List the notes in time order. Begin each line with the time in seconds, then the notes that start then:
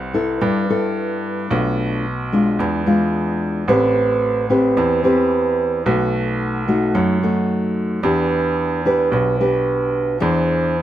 Already playing: C2 C3
0.14 B3 E4 A4
0.41 G2
0.70 B3 E4 A4
1.50 B1 B2 A3 D4 F4
2.33 G#3 D4 F4
2.59 E2 E3
2.86 G#3 D4 F4
3.68 A1 A3 C4 G4 B4
4.50 C4 G4 B4
4.77 E2 E3
5.03 C4 G4 B4
5.86 B1 B2 A3 D#4 F#4
6.68 A3 D#4 F#4
6.95 F#2 F#3
7.23 A3 D#4 F#4
8.03 E2 E3 D4 G4 B4
8.85 D4 G4 B4
9.12 B1 B2
9.41 D4 G4 B4
10.20 E2 E3 D4 G#4 C5